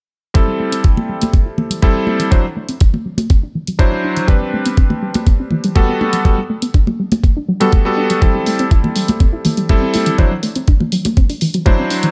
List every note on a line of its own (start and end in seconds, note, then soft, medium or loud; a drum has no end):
0.34 0.40 E3 medium
0.34 1.79 G3 medium
0.34 1.80 C4 medium
0.34 1.80 E4 medium
0.34 1.80 A4 medium
0.34 kick loud
0.34 closed hi-hat soft
0.48 0.54 G3 medium
0.60 0.64 A3 medium
0.72 0.77 C4 medium
0.72 closed hi-hat medium
0.84 0.89 E4 medium
0.84 kick loud
0.84 closed hi-hat soft
0.97 1.00 E3 medium
0.97 high conga medium
1.09 1.16 G3 medium
1.22 1.24 A3 medium
1.22 closed hi-hat medium
1.22 high conga medium
1.33 1.38 C4 medium
1.33 kick loud
1.33 closed hi-hat soft
1.46 1.52 E4 medium
1.58 1.62 E3 medium
1.58 high conga medium
1.70 1.75 G3 medium
1.70 closed hi-hat medium
1.82 2.29 G3 medium
1.82 1.87 A3 medium
1.82 2.29 C4 medium
1.82 2.29 E4 medium
1.82 2.29 A4 medium
1.82 kick loud
1.82 closed hi-hat soft
1.95 1.98 C4 medium
2.07 2.10 E4 medium
2.07 high conga medium
2.20 2.22 E3 medium
2.20 closed hi-hat medium
2.31 2.36 E3 medium
2.31 2.43 F#3 medium
2.31 2.44 D4 medium
2.31 2.44 E4 medium
2.31 2.44 C5 medium
2.31 kick loud
2.31 closed hi-hat soft
2.44 2.51 F#3 medium
2.57 2.61 A3 medium
2.69 2.73 C4 medium
2.69 closed hi-hat medium
2.81 2.85 D4 medium
2.81 kick loud
2.81 closed hi-hat soft
2.94 2.96 E3 medium
2.94 high conga medium
3.06 3.12 F#3 medium
3.18 3.21 A3 medium
3.18 closed hi-hat medium
3.18 high conga medium
3.30 3.35 C4 medium
3.30 kick loud
3.30 closed hi-hat soft
3.43 3.49 D4 medium
3.55 3.59 E3 medium
3.67 3.72 F#3 medium
3.67 closed hi-hat medium
3.79 4.25 F#3 medium
3.79 3.84 A3 medium
3.79 4.26 D4 medium
3.79 4.26 E4 medium
3.79 4.26 C5 medium
3.79 kick loud
3.79 closed hi-hat soft
3.92 3.95 C4 medium
4.04 4.07 D4 medium
4.17 4.19 E3 medium
4.17 closed hi-hat medium
4.27 4.33 E3 medium
4.27 5.73 G3 medium
4.27 5.73 C4 medium
4.27 5.73 D4 medium
4.27 5.74 B4 medium
4.27 kick loud
4.27 closed hi-hat soft
4.42 4.48 G3 medium
4.54 4.58 A3 medium
4.66 4.70 B3 medium
4.66 closed hi-hat medium
4.77 4.82 C4 medium
4.77 kick loud
4.77 closed hi-hat soft
4.90 4.93 E3 medium
4.90 high conga medium
5.03 5.09 G3 medium
5.14 5.18 A3 medium
5.14 closed hi-hat medium
5.14 high conga medium
5.27 5.31 B3 medium
5.27 kick loud
5.27 closed hi-hat soft
5.40 5.46 C4 medium
5.51 5.56 E3 medium
5.51 high conga medium
5.64 5.69 G3 medium
5.64 closed hi-hat medium
5.75 6.22 G3 medium
5.75 5.81 A3 medium
5.75 6.22 B3 medium
5.75 6.22 F#4 medium
5.75 6.23 A4 medium
5.75 kick loud
5.75 closed hi-hat soft
5.89 5.91 B3 medium
6.01 6.03 D4 medium
6.01 high conga medium
6.13 6.16 F#3 medium
6.13 closed hi-hat medium
6.25 6.30 F#3 medium
6.25 6.37 G3 medium
6.25 6.37 B3 medium
6.25 6.37 F#4 medium
6.25 6.37 A4 medium
6.25 kick loud
6.25 closed hi-hat soft
6.38 6.44 G3 medium
6.50 6.54 A3 medium
6.62 6.67 B3 medium
6.62 closed hi-hat medium
6.74 6.79 D4 medium
6.74 kick loud
6.74 closed hi-hat soft
6.87 6.90 F#3 medium
6.87 high conga medium
7.00 7.06 G3 medium
7.12 7.14 A3 medium
7.12 closed hi-hat medium
7.12 high conga medium
7.24 7.28 B3 medium
7.24 kick loud
7.24 closed hi-hat soft
7.37 7.43 D4 medium
7.49 7.53 F#3 medium
7.60 7.82 G3 medium
7.60 7.65 G3 medium
7.60 7.82 B3 medium
7.60 7.83 F#4 medium
7.60 7.83 A4 medium
7.60 closed hi-hat medium
7.72 7.78 A3 medium
7.72 kick loud
7.72 closed hi-hat soft
7.85 8.19 G3 medium
7.85 8.19 B3 medium
7.85 7.88 B3 medium
7.85 8.19 F#4 medium
7.85 8.20 A4 medium
7.98 8.00 D4 medium
8.10 8.13 F#3 medium
8.10 closed hi-hat medium
8.21 8.27 E3 medium
8.21 9.66 G3 medium
8.21 9.67 C4 medium
8.21 9.67 E4 medium
8.21 9.67 A4 medium
8.21 kick loud
8.21 closed hi-hat soft
8.35 8.41 G3 medium
8.46 8.51 A3 medium
8.46 open hi-hat medium
8.59 8.64 C4 medium
8.59 closed hi-hat medium
8.71 8.76 E4 medium
8.71 kick loud
8.71 closed hi-hat soft
8.84 8.87 E3 medium
8.84 high conga medium
8.96 9.03 G3 medium
8.96 open hi-hat medium
9.08 9.11 A3 medium
9.08 closed hi-hat medium
9.08 high conga medium
9.20 9.25 C4 medium
9.20 kick loud
9.20 closed hi-hat soft
9.33 9.39 E4 medium
9.45 9.49 E3 medium
9.45 open hi-hat medium
9.45 high conga medium
9.57 9.62 G3 medium
9.57 closed hi-hat medium
9.69 10.16 G3 medium
9.69 9.74 A3 medium
9.69 10.16 C4 medium
9.69 10.16 E4 medium
9.69 10.16 A4 medium
9.69 kick loud
9.69 closed hi-hat soft
9.82 9.85 C4 medium
9.94 9.97 E4 medium
9.94 open hi-hat loud
9.94 high conga medium
10.06 10.09 E3 medium
10.06 closed hi-hat medium
10.18 10.23 E3 medium
10.18 10.30 F#3 medium
10.18 10.31 D4 medium
10.18 10.31 E4 medium
10.18 10.31 C5 medium
10.18 kick loud
10.18 closed hi-hat soft
10.31 10.38 F#3 medium
10.43 10.48 A3 medium
10.43 open hi-hat medium
10.56 10.60 C4 medium
10.56 closed hi-hat medium
10.68 10.72 D4 medium
10.68 kick loud
10.68 closed hi-hat soft
10.80 10.83 E3 medium
10.80 high conga medium
10.92 10.99 F#3 medium
10.92 open hi-hat medium
11.05 11.08 A3 medium
11.05 closed hi-hat medium
11.05 high conga medium
11.17 11.22 C4 medium
11.17 kick loud
11.17 closed hi-hat soft
11.30 11.36 D4 medium
11.30 open hi-hat medium
11.41 11.46 E3 medium
11.41 open hi-hat loud
11.54 11.59 F#3 medium
11.54 closed hi-hat medium
11.66 12.11 F#3 medium
11.66 11.71 A3 medium
11.66 12.11 D4 medium
11.66 12.11 E4 medium
11.66 12.11 C5 medium
11.66 kick loud
11.66 closed hi-hat soft
11.79 11.82 C4 medium
11.90 11.94 D4 medium
11.90 open hi-hat medium
12.03 12.06 E3 medium
12.03 closed hi-hat medium